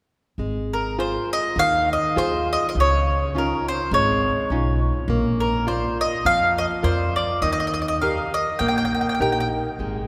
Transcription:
0.38 G#1 G#3
0.73 A#4
0.98 F4 G#4 C5
1.33 D#5
1.56 D#2 D#3 F5
1.93 D#5
2.16 D#2 F4 G#4 C5
2.53 D#5
2.69 D#5
2.75 C#2 C#3
2.80 C#5
3.35 C#4 D#4 F4 A#4
3.68 C5
3.91 G#1 G#3 C#5
4.50 B1 C#4 D#4 F4
5.08 A#1 A#3
5.40 A#4
5.67 F4 A#4 C5 D5
6.01 D#5
6.25 F2 F3 F5
6.58 D#5
6.83 F2 F4 A#4 C5 D5
7.16 D5
7.42 D#2 D#3 D#5
7.52 D#5
7.60 D#5
7.67 D#5
7.74 D#5
7.82 D#5
7.88 D#5
8.02 D#4 G4 A#4 F5
8.34 D#5
8.59 A#1 A#3 G5
8.68 G5
8.78 G5
8.85 G5
8.95 G5
9.01 G5
9.09 G5
9.15 G5
9.20 A#1 D#4 G4 A#4 G5
9.32 G5
9.40 G5
9.79 G#1 G#3

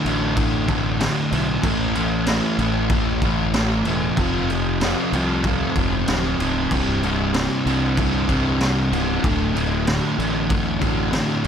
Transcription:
0.05 A1 D2 A2 D3, crash
0.37 D2 A2 D3, kick, crash
0.67 D2 A2 D3, kick, crash
1.00 D2 A2 D3, snare, crash
1.32 B1 D2 A2 D3, crash
1.63 A1 A2 E3 A3, kick, crash
1.95 A2 E3 A3, crash
2.27 A2 E3 A3, snare, crash
2.58 A1 A2 E3 A3, crash
2.90 A2 E3 A3, kick, crash
3.22 A2 E3 A3, kick, crash
3.54 A2 E3 A3, snare, crash
3.85 E1 A2 E3 A3, crash
4.17 F1 F2 C3 F3, kick, crash
4.50 F2 C3 F3, crash
4.81 F2 C3 F3, snare, crash
5.12 C2 F2 C3 F3, crash
5.44 F2 C3 F3, kick, crash
5.76 E1 F2 C3 F3, kick, crash
6.08 D1 F2 C3 F3, snare, crash
6.39 C1 F2 C3 F3, crash
6.71 C1 C2 G2 C3, kick, crash
7.03 C2 G2 C3, crash
7.34 C2 G2 C3, snare, crash
7.66 C2 G2 C3, crash
7.97 C2 G2 C3, kick, crash
8.29 C2 G2 C3, kick, crash
8.61 C2 G2 C3, snare, crash
8.92 C#1 C2 G2 C3, crash
9.24 D1 D2 A2 D3, kick, crash
9.54 D2 A2 D3, crash
9.87 D2 A2 D3, snare, crash
10.18 A1 D2 A2 D3, crash
10.49 D2 A2 D3, kick, crash
10.80 D2 A2 D3, kick, crash
11.11 D2 A2 D3, snare, crash
11.44 D2 A2 D3

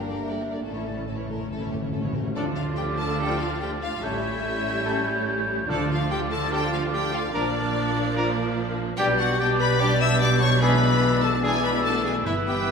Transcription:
Already playing: G1 G2 A#3 D4 A#4
0.00 G3 D4 A#4 F5
0.11 D3 A#3 G4 D5
0.22 G3 D4 A#4 E5
0.32 D3 A#3 G4 D5
0.43 G3 D4 A#4
0.53 D3 A#3 G4 D5
0.64 A1 A2 A3 C#4 E4 A4 D5
0.73 A2 E3 C#4 E4 C#5
0.81 A2
0.86 A2 A3 C#4 A4
0.97 A2 E3 C#4 E4 C#5
1.05 A2 A3 C#4 A4
1.09 A2 C#5
1.18 E3 C#4 E4 C#5
1.28 A2 A3 C#4 A4 A#4
1.35 A2
1.41 A2 E3 C#4 E4 C#5
1.49 A2 A3 C#4 A4
1.59 A2 E3 C#4 E4 C#5
1.67 A2
1.72 A2 A3 C#4 G4 A4
1.82 A2 E3 C#4 E4 C#5
1.90 A2 A4
1.94 A2 A3 C#4
2.04 A2 E3 C#4 E4 C#5
2.12 A2 A3 C#4 A4 A#4
2.20 A2
2.25 A2 E3 C#4 E4 C#5
2.35 D2 D3 F3 A3 D4 F4 A4 D5 F6
2.56 F4 F5
2.77 G4 G5
2.98 A4 A5
3.19 F3 D4 G4 A4 G5
3.41 F4 F5
3.61 G4 G5
3.82 F4 F5
4.02 A1 A2 G3 A3 C#4 E4 A4 C#5 E5 G6
4.86 G3 C#4 A4
5.67 D2 D3 F3 A3 D4 F4 A4 D5 F6
5.90 F4 F5
6.10 G4 G5
6.31 A4 A5
6.52 F3 D4 G4 A4 G5
6.72 F4 F5
6.93 G4 G5
7.13 F4 F5
7.34 A#1 A#2 F3 A#3 D4 A#4 D5
8.16 F3 D4 A#4
8.97 B1 B2 G3 B3 D4 G4 D5 G5 G6
9.18 F#4 F#5
9.39 G3 B3 D4 G4 D5 G5 G6
9.60 B4 B5
9.80 G3 B3 D4 G4 D5 D6 G6
10.00 E5 E6
10.20 D5 D6
10.41 C#5 C#6
10.60 E3 G#3 B3 D4 G#4 B4 D5 B5 E6
11.23 A4 A5
11.43 E3 G#3 B3 D4 G#4 D5 G#5 E6
11.63 B4 B5
11.85 A3 A4 A5
12.04 G#4 G#5
12.25 G1 G2 E3 B3 E4 B4 E5 E6
12.47 G4 G5

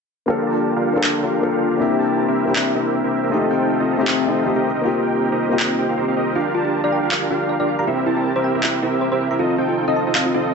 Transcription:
0.26 A#3 D4 F4 G4 A4 A#4 F5
0.47 D4 F4 G4 A#4 A5
0.76 D4 F4 G4 A#4 F5
0.93 A#3 D4 F4 G4 A4 A#4 F5
1.04 D4 F4 G4 A#4 F5, clap
1.23 D4 F4 G4 A#4 F5
1.41 A#3 D4 F4 A4
1.52 D4 F4 G4 A#4 F5
1.71 D4 F4 G4 A#4 F5
1.78 A#3 C4 D4 E4 G4 A#4 E5
1.99 C4 E4 G4 A#4 A5
2.28 C4 E4 G4 A#4 E5
2.45 A#3 C4 D4 E4 G4 A#4 E5
2.49 G4
2.56 C4 E4 G4 A#4 E5, clap
2.75 C4 E4 G4 A#4 E5
3.04 C4 E4 G4 A#4 E5
3.23 C4 E4 G4 A#4 E5
3.30 A3 C4 D#4 F4 A4 D#5
3.34 G4
3.51 C4 D#4 F4 A4 G5
3.80 C4 D#4 F4 A4 D#5
3.97 A3 C4 D#4 F4 A4 D#5
4.01 G4
4.07 C4 D#4 F4 A4 D#5, clap
4.26 C4 D#4 F4 A4 D#5
4.44 A3 C4 D#4 G4
4.56 C4 D#4 G4 A#4 D#5
4.75 C4 D#4 G4 A#4 D#5
4.82 A#3 C4 D#4 F4 G4 A#4 D#5
4.86 G4
5.03 C4 D#4 G4 A#4 G5
5.32 C4 D#4 G4 A#4 D#5
5.49 A#3 C4 D#4 F4 G4 A#4 D#5
5.53 G4
5.59 C4 D#4 G4 A#4 D#5, clap
5.79 C4 D#4 G4 A#4 G5
5.89 C4 D#4 G4 A#4 F5
5.97 C4 D#4 G4 A#4 C5
6.08 C4 D#4 G4 A#4 F5
6.17 C4 D#4 G4 A#4 D#5
6.35 D4 F4 G4 A#4 F5
6.54 D4 F4 G4 A#4 A5
6.65 F4
6.84 D4 F4 G4 A#4 D5 F5
6.92 G5
7.03 D4 F4 G4 A#4 F5
7.11 D4 F4 G4 A#4 F5, clap
7.22 F4
7.30 D4 F4 G4 A#4 F5
7.49 D5
7.60 D4 F4 G4 A#4 D5 F5
7.79 D4 F4 G4 A#4 F5 A#5
7.87 C4 E4 G4 A#4 E5
8.06 C4 E4 G4 A#4 A5
8.17 E4
8.36 C4 E4 G4 A#4 C5 E5
8.44 G5
8.55 C4 E4 G4 A#4 E5
8.63 C4 E4 G4 A#4 E5, clap
8.74 E4
8.82 C4 E4 G4 A#4 E5
9.01 C5
9.12 C4 E4 G4 A#4 C5 E5
9.31 C4 E4 G4 A#4 E5 A#5
9.39 C4 D#4 F4 A4 D#5
9.58 C4 D#4 F4 A4 G5
9.69 F4
9.88 C4 D#4 F4 A4 D#5
9.96 A5
10.07 C4 D#4 F4 A4 D#5
10.15 C4 D#4 F4 A4 D#5 F5, clap
10.26 F4
10.34 C4 D#4 F4 A4 D#5

